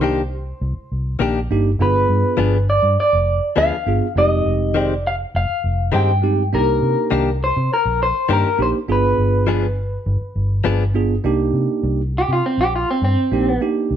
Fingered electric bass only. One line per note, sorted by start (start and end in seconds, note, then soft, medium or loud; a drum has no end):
0.00 0.52 C2 medium
0.61 0.75 C2 medium
0.77 muted fingered electric bass stroke soft
0.92 1.18 C2 medium
1.20 1.47 A#1 medium
1.50 1.78 G1 medium
1.79 2.05 G1 medium
2.09 2.23 G2 medium
2.38 2.78 G1 medium
2.83 2.96 G2 loud
3.13 3.39 F1 medium
3.57 3.70 D2 medium
3.86 4.00 G1 medium
4.15 4.42 F1 loud
4.45 5.24 F1 medium
5.34 5.47 F1 medium
5.64 5.90 F1 medium
5.93 6.55 G2 medium
6.53 6.79 C2 medium
6.82 6.95 C3 medium
7.12 7.51 C2 medium
7.57 7.69 C3 medium
7.85 8.11 A#1 medium
8.29 8.42 G2 medium
8.59 8.72 A#1 medium
8.88 9.14 G1 loud
9.18 9.96 G1 medium
10.06 10.19 G1 medium
10.21 muted fingered electric bass stroke soft
10.36 10.62 G1 medium
10.65 11.17 G1 medium
11.24 11.50 C2 medium
11.53 11.67 C3 medium
11.83 12.23 C2 loud
12.28 12.41 C3 medium
12.58 12.84 A#1 medium
13.02 13.15 G2 medium
13.32 13.58 A#1 medium
13.91 13.96 C2 medium